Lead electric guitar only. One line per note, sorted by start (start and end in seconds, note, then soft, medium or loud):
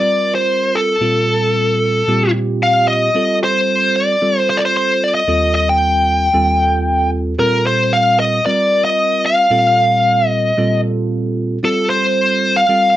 0.00 0.34 D5 medium
0.35 0.76 C5 medium
0.75 2.31 A4 medium
2.63 2.88 F5 medium
2.88 3.37 D#5 medium
3.44 3.97 C5 medium
3.96 4.39 D5 medium
4.39 4.50 C5 medium
4.50 4.59 C5 medium
4.57 4.61 D5 medium
4.65 4.76 C5 medium
4.77 5.03 C5 medium
5.04 5.14 D5 medium
5.15 5.54 D#5 medium
5.55 5.67 D#5 medium
5.69 7.10 G5 medium
7.39 7.66 A#4 medium
7.67 7.94 C5 medium
7.93 8.19 F5 medium
8.20 8.45 D#5 medium
8.46 8.84 D5 medium
8.85 9.25 D#5 medium
9.26 10.29 F5 medium
10.29 10.80 D#5 medium
11.65 11.90 A4 medium
11.90 12.59 C5 medium
12.57 12.97 F5 medium